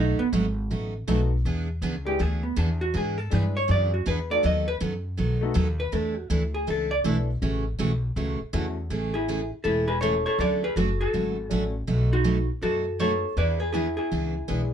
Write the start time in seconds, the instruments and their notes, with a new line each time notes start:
Already playing: upright bass B1, steel-string acoustic guitar B2 F#3 A3 D#4 F#4, hollow-body jazz guitar D#4
0.19 hollow-body jazz guitar B3, muted upright bass stroke
0.33 upright bass G#1, steel-string acoustic guitar B2 F#3 A3 D#4 F#4
0.71 upright bass A1, steel-string acoustic guitar B2 F#3 A3 D#4 F#4
1.07 upright bass B1, steel-string acoustic guitar B2 F#3 A3 D#4 F#4, upright piano A3 B3 D#4 F#4 A4
1.45 upright bass E2, steel-string acoustic guitar E3 B3 D4 G#4
1.82 upright bass C#2, steel-string acoustic guitar E3 B3 D4 G#4
2.05 upright piano G#3 B3 D4 E4 G#4, hollow-body jazz guitar G4
2.19 upright bass D2, steel-string acoustic guitar E3 B3 D4 G#4, hollow-body jazz guitar G#4
2.43 hollow-body jazz guitar B3
2.56 upright bass E2, steel-string acoustic guitar E3 B3 D4 G#4, hollow-body jazz guitar D4
2.81 hollow-body jazz guitar F#4
2.94 upright bass G#2, steel-string acoustic guitar E3 B3 D4 G#4, hollow-body jazz guitar G#4
3.18 hollow-body jazz guitar A4
3.31 upright bass G2, steel-string acoustic guitar E3 B3 D4 G#4, upright piano G#3 B3 D4 E4 G#4, hollow-body jazz guitar B4
3.57 hollow-body jazz guitar C#5
3.68 upright bass F#2, steel-string acoustic guitar E3 B3 D4 G#4, hollow-body jazz guitar D5
3.94 hollow-body jazz guitar F#4
4.06 upright bass E2, steel-string acoustic guitar E3 B3 D4 G#4, hollow-body jazz guitar B4
4.30 upright piano A3 B3 D#4 F#4 A4, hollow-body jazz guitar D5
4.43 upright bass D#2, steel-string acoustic guitar D#3 F#3 B3 D#4 A4, hollow-body jazz guitar D#5
4.68 hollow-body jazz guitar B4
4.80 upright bass F#2, steel-string acoustic guitar D#3 F#3 B3 D#4 A4
5.17 upright bass B1, steel-string acoustic guitar D#3 F#3 B3 D#4 A4
5.41 upright piano A3 B3 D#4 F#4 A4
5.54 upright bass D#2, steel-string acoustic guitar D#3 F#3 B3 D#4 A4
5.80 hollow-body jazz guitar B4
5.92 upright bass E2, steel-string acoustic guitar E3 A3 D4 E4 A4, hollow-body jazz guitar A4
6.18 hollow-body jazz guitar F#4
6.30 upright bass D2, steel-string acoustic guitar E3 A3 D4 E4 A4, hollow-body jazz guitar E4
6.54 hollow-body jazz guitar G#4
6.67 upright bass C#2, steel-string acoustic guitar E3 A3 D4 E4 A4, hollow-body jazz guitar A4
6.91 hollow-body jazz guitar D5
7.04 upright bass B1, steel-string acoustic guitar E3 A3 D4 E4 A4, upright piano A3 B3 D4 E4 A4
7.42 upright bass A1, steel-string acoustic guitar C#3 E3 A3 C#4 F#4
7.79 upright bass B1, steel-string acoustic guitar C#3 E3 A3 C#4 F#4
8.16 upright bass C#2, steel-string acoustic guitar C#3 E3 A3 C#4 F#4
8.40 muted upright bass stroke
8.53 upright bass E2, steel-string acoustic guitar C#3 E3 A3 C#4 F#4, upright piano A3 C#4 E4 F#4 A4
8.90 upright bass A1, steel-string acoustic guitar C#3 E3 A3 C#4 G#4
9.14 hollow-body jazz guitar E4 G#4
9.28 steel-string acoustic guitar C#3 E3 A3 C#4 G#4
9.64 upright bass E1, steel-string acoustic guitar C#3 E3 A3 C#4 G#4, hollow-body jazz guitar E4 A4
9.87 hollow-body jazz guitar G#4 B4
10.01 steel-string acoustic guitar C#3 E3 A3 C#4 G#4, upright piano A3 C#4 E4 G#4 A4, hollow-body jazz guitar A4 C#5
10.26 hollow-body jazz guitar A4 C#5
10.38 upright bass D2, steel-string acoustic guitar D3 F#3 A3 C#4 F#4, hollow-body jazz guitar A4 D5
10.64 hollow-body jazz guitar G#4 B4
10.76 upright bass F#1, steel-string acoustic guitar D3 F#3 A3 C#4 F#4, hollow-body jazz guitar F#4 A4
11.01 hollow-body jazz guitar F#4 A4
11.13 upright bass G#1, steel-string acoustic guitar D3 F#3 A3 C#4 F#4
11.49 upright bass A1, steel-string acoustic guitar D3 F#3 A3 C#4 F#4, upright piano A3 C#4 D4 F#4 A4, hollow-body jazz guitar G#4
11.87 upright bass B1, steel-string acoustic guitar B2 F#3 A3 D#4 F#4
12.12 hollow-body jazz guitar D#4 F#4
12.24 steel-string acoustic guitar B2 F#3 A3 D#4 F#4
12.62 upright bass F#2, steel-string acoustic guitar B2 F#3 A3 D#4 F#4, hollow-body jazz guitar F#4 A4
12.99 steel-string acoustic guitar B2 F#3 A3 D#4 F#4, upright piano A3 B3 D#4 F#4 A4, hollow-body jazz guitar A4 C#5
13.37 upright bass E2, steel-string acoustic guitar E3 B3 D4 G#4, hollow-body jazz guitar B4 D5
13.60 hollow-body jazz guitar G#4 B4
13.72 steel-string acoustic guitar E3 B3 D4 G#4, hollow-body jazz guitar E4 G#4
13.97 hollow-body jazz guitar E4 G#4
14.12 upright bass C#2, steel-string acoustic guitar E3 B3 D4 G#4
14.48 upright bass B1, steel-string acoustic guitar E3 B3 D4 G#4, upright piano G#3 B3 D4 E4 G#4